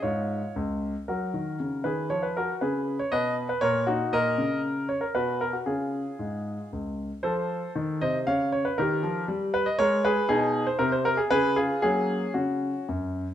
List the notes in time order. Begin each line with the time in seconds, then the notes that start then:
0.02 G#2 F4 C#5
0.56 C#2
1.08 F#3 F#4 A#4
1.34 D#3
1.60 C#3
1.84 D#3 G#4 B4
2.10 F3 C#5
2.23 B4
2.37 F#4 A#4
2.61 C#3 G#4 B4
2.99 C#5
3.12 B2 B4 D#5
3.49 B4
3.61 A#2 A#4 C#5
3.87 D#4 F#4
4.13 A#2 A#4 D#5
4.38 C#3
4.89 C#5
5.01 A#4
5.15 B2 F#4 B4
5.41 A#4
5.53 F#4
5.66 C#3 C#4 F4 G#4
6.19 G#2
6.73 C#2
7.23 F3 A4 C5
7.75 D#3
8.01 C3 C5 D#5
8.27 C#3 C#5 F5
8.52 C#5
8.65 B4
8.78 D#3 G4 A#4
9.03 F3
9.28 G3
9.54 B4
9.66 D#5
9.79 G#3 A#4 C#5
10.05 G#4 B4
10.29 B2 D#4 G#4
10.67 C5
10.79 C3 A#4
10.92 C5
11.05 A#4
11.17 G#4
11.30 C#3 G#4 B4
11.56 F4 G#4
11.82 F#3 A#3 C#4 G#4
12.34 C#3 C#4 F#4
12.89 F#2